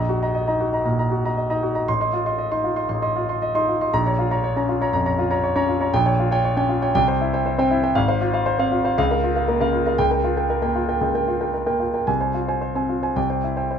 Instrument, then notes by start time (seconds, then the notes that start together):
grand piano
Already playing: A#1 D#5 A#5
0.09 F#4
0.22 D#5 A#5
0.35 D#5
0.47 D#4 D#5 A#5
0.60 F#4
0.73 D#5 A#5
0.85 A#2 A#5
0.99 D#5 A#5
1.11 F#4
1.25 D#5 A#5
1.37 D#5
1.50 D#4 D#5 A#5
1.63 F#4
1.75 D#5 A#5
1.88 A1 C6
2.01 D#5 C6
2.13 F4
2.26 D#5 C6
2.38 D#5
2.51 D#4 D#5 C6
2.64 F4
2.76 D#5 C6
2.89 A1 C6
3.02 D#5 C6
3.16 F4
3.29 D#5 C6
3.42 D#5
3.55 D#4 D#5 C6
3.68 F4
3.81 D#5 C6
3.93 A#1 A#5
4.06 C#5 A#5
4.19 F4
4.31 C#5 A#5
4.44 C#5
4.56 C#4 C#5 A#5
4.69 F4
4.81 C#5 A#5
4.93 F2 A#5
5.06 C#5 A#5
5.18 F4
5.31 C#5 A#5
5.44 C#5
5.56 C#4 C#5 A#5
5.68 F4
5.81 C#5 A#5
5.94 A#1 G5
6.06 C#5 G5
6.19 F4
6.31 C#5 G5
6.44 C#5
6.57 C#4 C#5 G5
6.69 F4
6.82 C#5 G5
6.95 C2 G5
7.08 C5 G5
7.21 E4
7.33 C5 G5
7.46 C5
7.58 C4 C5 G5
7.71 E4
7.83 C5 G5
7.95 G#1 F5
8.08 C5 F5
8.21 F4
8.33 C5 F5
8.46 C5
8.59 C4 C5 F5
8.72 F4
8.84 C5 F5
8.98 C#2 F5
9.11 A#4 F5
9.24 F4
9.35 A#4 F5
9.48 A#3 A#4
9.60 C#3 A#4 F5
9.73 F4
9.86 A#4 F5
9.98 C#2 G5
10.11 A#4 G5
10.24 F4
10.37 A#4 G5
10.50 A#4
10.62 A#3 A#4 G5
10.75 F4
10.88 A#4 G5
11.01 C#2 G5
11.15 A#4 G5
11.28 F4
11.41 A#4 G5
11.54 A#4
11.66 A#3 A#4 G5
11.80 F4
11.94 A#4 G5
12.07 C2 G#5
12.20 C5 G#5
12.34 F4
12.48 C5 G#5
12.61 C5
12.75 C4 C5 G#5
12.89 F4
13.03 C5 G#5
13.16 C2 G5
13.30 C5 G5
13.44 E4
13.57 C5 G5
13.71 C5